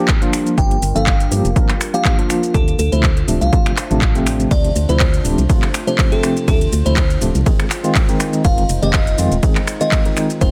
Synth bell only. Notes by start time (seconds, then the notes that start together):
0.58 G5
0.96 F5
1.94 F5
2.54 A4
2.79 A4
2.92 C5
3.41 F5
4.51 D5
4.89 C5
5.87 C5
6.12 A4
6.48 A4
6.86 C5
8.45 F5
8.82 D#5
9.81 D#5
10.41 C5